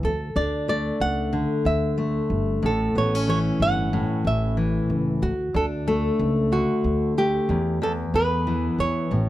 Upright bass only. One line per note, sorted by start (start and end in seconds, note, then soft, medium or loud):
0.03 0.30 D2 medium
0.36 0.89 D2 medium
1.00 1.43 C#2 medium
1.65 2.18 D2 medium
2.30 2.57 G1 medium
2.62 2.89 A1 medium
2.95 3.48 A1 medium
3.60 4.02 G1 medium
4.25 4.78 A1 medium
4.90 5.16 C#2 medium
5.22 5.49 D2 medium
5.54 6.08 D2 loud
6.19 6.62 C#2 medium
6.84 7.37 D2 medium
7.49 8.02 E2 loud
8.14 8.67 E2 loud
8.79 9.12 E2 medium
9.11 9.29 A1 medium